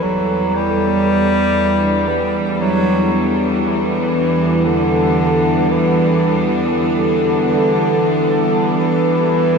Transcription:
Already playing: synth drone E2 E3, cello section E3 G3, synth texture A4
0.02 bass clarinet F#3
0.55 bass clarinet G3
0.84 cello section B3
1.75 cello section D4
2.08 bass clarinet E3
2.60 bass clarinet F#3
3.65 bass clarinet E3
4.65 bass clarinet D3
5.70 bass clarinet E3
6.73 bass clarinet D3
8.79 bass clarinet E3

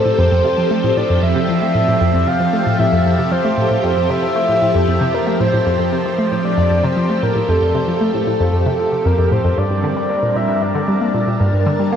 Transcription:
Already playing: string machine F3 C4 G4 A4, soft synth lead A4
0.06 synth arpeggio sound A2
0.19 synth arpeggio sound F2, soft synth lead C5
0.32 synth arpeggio sound F2
0.45 synth arpeggio sound C3
0.58 synth arpeggio sound F3
0.71 synth arpeggio sound A3
0.84 synth arpeggio sound A2
0.97 synth arpeggio sound A2, soft synth lead D5
1.10 synth arpeggio sound F2
1.23 synth arpeggio sound F2, soft synth lead E5
1.36 synth arpeggio sound C3
1.49 synth arpeggio sound F3
1.62 synth arpeggio sound A3
1.75 synth arpeggio sound A2
1.88 synth arpeggio sound A2
2.01 synth arpeggio sound F2
2.14 synth arpeggio sound F2
2.27 synth arpeggio sound C3, soft synth lead F5
2.40 synth arpeggio sound F3
2.53 synth arpeggio sound A3
2.66 synth arpeggio sound A2
2.79 synth arpeggio sound A2, soft synth lead E5
2.93 synth arpeggio sound F2
3.06 synth arpeggio sound F2
3.19 synth arpeggio sound C3
3.32 synth arpeggio sound F3, soft synth lead C5
3.45 synth arpeggio sound A3
3.58 synth arpeggio sound A2
3.71 synth arpeggio sound A2
3.84 synth arpeggio sound F2, soft synth lead C5
3.97 synth arpeggio sound F2
4.10 synth arpeggio sound C3, soft synth lead E5
4.23 synth arpeggio sound F3
4.36 synth arpeggio sound A3
4.49 synth arpeggio sound A2
4.62 synth arpeggio sound A2
4.75 synth arpeggio sound F2
4.88 synth arpeggio sound F2
5.01 synth arpeggio sound C3
5.14 synth arpeggio sound F3, soft synth lead A#4
5.27 synth arpeggio sound A3
5.40 synth arpeggio sound A2, soft synth lead C5
5.53 synth arpeggio sound A2
5.66 synth arpeggio sound F2
5.79 synth arpeggio sound F2
5.92 synth arpeggio sound C3
6.06 synth arpeggio sound F3
6.19 synth arpeggio sound A3
6.32 synth arpeggio sound A2
6.45 synth arpeggio sound A2, soft synth lead D5
6.58 synth arpeggio sound F2
6.71 synth arpeggio sound F2
6.84 synth arpeggio sound C3, soft synth lead C5
6.97 synth arpeggio sound F3
7.10 synth arpeggio sound A3
7.23 synth arpeggio sound A2, soft synth lead A#4
7.36 synth arpeggio sound A2
7.49 synth arpeggio sound F2, soft synth lead A4
7.62 synth arpeggio sound F2
7.75 synth arpeggio sound C3
7.88 synth arpeggio sound F3
8.01 synth arpeggio sound A3
8.14 synth arpeggio sound A2
8.27 synth arpeggio sound A2
8.40 synth arpeggio sound F2
8.53 synth arpeggio sound F2
8.66 synth arpeggio sound C3
8.79 synth arpeggio sound F3
8.93 synth arpeggio sound C3
9.06 synth arpeggio sound F2, soft synth lead A#4
9.19 synth arpeggio sound F2
9.32 synth arpeggio sound A2, soft synth lead C5
9.45 synth arpeggio sound F2
9.58 synth arpeggio sound G2, string machine G3, soft synth lead D5
9.71 synth arpeggio sound G2
9.84 synth arpeggio sound D3
9.88 string machine A#4
9.93 synth arpeggio sound G3, string machine D4
10.10 synth arpeggio sound A#3
10.23 synth arpeggio sound A#2
10.36 synth arpeggio sound A#2, soft synth lead E5
10.49 synth arpeggio sound G2
10.60 synth arpeggio sound G2, soft synth lead D5, string machine A5
10.75 synth arpeggio sound D3
10.88 synth arpeggio sound G3
11.01 synth arpeggio sound A#3
11.14 synth arpeggio sound A#2
11.27 synth arpeggio sound A#2
11.40 synth arpeggio sound G2
11.53 synth arpeggio sound G2
11.66 synth arpeggio sound D3, soft synth lead A#4
11.79 synth arpeggio sound G3
11.92 synth arpeggio sound A#3

